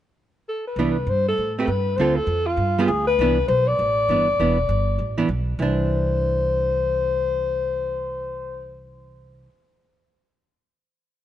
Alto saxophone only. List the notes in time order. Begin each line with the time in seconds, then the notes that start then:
0.49 A4
0.67 B4
1.09 C5
1.28 A4
1.64 A4 B4
1.97 C5
2.16 A4
2.46 F4
2.88 G#4
3.07 B4
3.48 C5
3.67 D5
5.61 C5